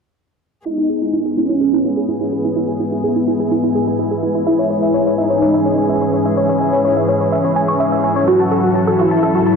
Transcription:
0.66 G#2 E3 G#3 B3 D#4 E4 G#4 B4, closed hi-hat
0.78 E4
0.90 G#4, closed hi-hat
0.94 E5
1.02 E4, closed hi-hat
1.13 E4, closed hi-hat
1.26 G#4
1.37 C#4 E4, closed hi-hat
1.44 G#5
1.49 E4, closed hi-hat
1.61 G#4, closed hi-hat
1.73 E4
1.85 E4, closed hi-hat
1.97 G#4, closed hi-hat
2.09 E4, closed hi-hat
2.21 E4
2.32 G#4, closed hi-hat
2.45 E4, closed hi-hat
2.56 E4
2.68 G#4, closed hi-hat
2.80 E4, closed hi-hat
2.92 E4, closed hi-hat
3.04 G#4, closed hi-hat
3.16 E4
3.28 E4, closed hi-hat
3.40 G#4, closed hi-hat
3.51 E4, closed hi-hat
3.64 E4
3.75 G#4, closed hi-hat
3.87 E4, closed hi-hat
3.99 E4, closed hi-hat
4.11 G#4, closed hi-hat
4.23 E4, closed hi-hat
4.35 E4, closed hi-hat
4.47 C#4 E4 G#4 E5, closed hi-hat
4.59 C#5, closed hi-hat
4.70 C#5, closed hi-hat
4.83 E5, closed hi-hat
4.94 C#5, closed hi-hat
5.06 C#5
5.18 D#4 E5, closed hi-hat
5.30 C#5, closed hi-hat
5.42 C#5, closed hi-hat
5.54 E5
5.66 C#5, closed hi-hat
5.78 C#5, closed hi-hat
5.89 E5, closed hi-hat
6.02 C#5, closed hi-hat
6.13 C#5, closed hi-hat
6.25 E5, closed hi-hat
6.37 C#5, closed hi-hat
6.49 C#5, closed hi-hat
6.61 E5, closed hi-hat
6.73 C#5, closed hi-hat
6.85 C#5, closed hi-hat
6.97 E5
7.09 C#5, closed hi-hat
7.21 C#5, closed hi-hat
7.32 E5, closed hi-hat
7.45 C#5
7.56 G#5, closed hi-hat
7.68 C#6, closed hi-hat
7.80 E5, closed hi-hat
7.92 E5, closed hi-hat
8.04 G#5, closed hi-hat
8.16 C#5, closed hi-hat
8.28 F#3 F#4 A4, closed hi-hat
8.40 A5, closed hi-hat
8.51 A4, closed hi-hat
8.64 F#4, closed hi-hat
8.75 A5, closed hi-hat
8.87 A4
8.99 E4 F#4, closed hi-hat
9.11 A5, closed hi-hat
9.23 A4, closed hi-hat
9.35 F#4
9.47 A5, closed hi-hat

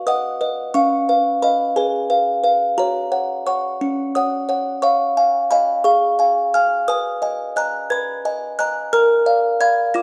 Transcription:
0.07 B4 D#5 F#5 D#6
0.41 B4 D#5
0.74 C#4 F5 C#6
1.09 B4 F5
1.42 B4 D#5 F5 B5
1.76 G#4 B4 G#5
2.10 B4 F5
2.44 B4 F5
2.78 F#4 C#5 A#5
3.12 C#5 F#5
3.46 C#5 F#5 C#6
3.81 C#4
4.15 C#5 F#5 D#6
4.49 C#5 F#5
4.82 C#5 F5 C#6
5.17 F5 G#5
5.51 D#5 F5 G#5 B5
5.84 G#4 F5 C#6
6.19 F5 G#5
6.54 F5 G#5 F6
6.88 B4 G#5 D#6
7.22 D#5 G#5
7.56 D#5 G#5 A#5 F#6
7.90 B4 B5 G#6
8.25 D#5 G#5
8.59 D#5 G#5 A#5 F#6
8.93 A#4 A#5 F6
9.26 D5 F5
9.60 D5 F5 B5 G#6
9.94 F4 D6 A#6

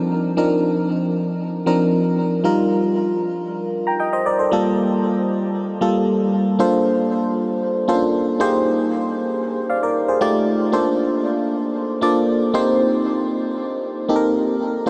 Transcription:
Already playing: F3 C4 D4 D#4 A#4
0.37 F3 C4 D4 D#4 A#4
1.66 F3 C4 D4 D#4 A#4
2.44 G3 D#4 F4 A#4
3.87 G5 A#5
4.00 D#5 G5
4.13 C5 D#5
4.26 A#4 D5
4.39 A4 C5
4.51 G3 A#3 F4 A4
5.81 G3 A#3 F4 A4
6.59 A#3 D4 F4 A4 C5
7.88 A#3 C#4 F4 A4 C5
7.94 D4
8.40 A#3 D#4 G4 G#4 C5
9.70 D5 F5
9.83 A#4 D5
10.08 G#4 C5
10.21 A3 D#4 F4 G4 D5
10.72 A#3 D4 F4 A4 C5
12.01 A#3 D4 F4 A4 D5
12.54 A#3 C4 D#4 G4 C5
14.08 A#3 C4 D#4 G4 A4
14.16 A#4
14.86 A#3 D4 F4

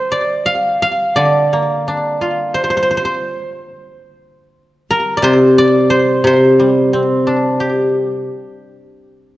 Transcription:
Already playing: A#4 C5
0.12 D5
0.46 F5
0.82 F5
1.16 D3 D5
1.53 A#3
1.88 D4
2.21 F4
2.54 C5
2.64 C5
2.70 C5
2.77 C5
2.82 C5
2.91 C5
2.97 C5
3.05 C5
4.91 A#4
5.17 D5
5.22 C3 C5
5.58 D5
5.90 C5
6.24 C3 C5
6.59 G3
6.93 C4
7.27 D4
7.60 G4

